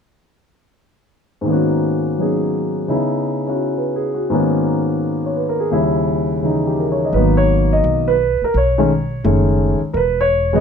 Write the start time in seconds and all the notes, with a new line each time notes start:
1.41 G#2 D#3
1.46 A#3 B3
1.51 C#4 F#4
2.18 F#3 B3 C#4 D#4 G#4
2.88 C#3 B3 D#4 E4
3.47 C#4 E4 F#4
3.77 B4
3.96 G#4
4.14 F#4
4.30 G#2 D#3 A#3 B3 C#4
4.34 F#4
5.26 C#5
5.37 B4
5.49 A#4
5.60 G#4
5.71 D#2 C#3 G3 E4
6.42 C#3 E3 D#4
6.67 G4
6.80 A#4
6.92 C#5
7.05 D#5
7.13 G#1 D#3 F#3 A#3 B3 B4
7.37 C#5
7.73 D#5
7.84 B1
8.08 B4
8.42 A#4, muted upright bass stroke
8.54 B1 C#5
8.78 D#3 G#3 A3 C#4
9.24 F#1 D#3 G#3 A3 C#4
9.81 muted upright bass stroke
9.93 E1 A#4 B4
10.21 C#5
10.53 C#3 F#3 G#3 B3 D#5